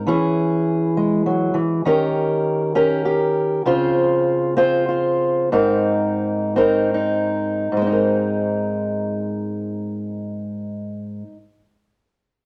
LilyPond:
\new Staff \with { instrumentName = "Steel-string acoustic guitar" } { \time 6/8 \key aes \major \tempo 4. = 60 << { <cis' e' gis'>2. | <des' g' bes'>4. <des' g' bes'>8 g'4 | <c' f' c''>4. <c' f' c''>8 f'4 | <c' ees' bes'>4. <c' ees' bes'>8 ees'4 |
<aes c' ees' bes'>2.~ | <aes c' ees' bes'>2. | } \\ { e4. gis8 ges8 e8 | ees2. | des2. | aes,2. |
aes,2.~ | aes,2. | } >> }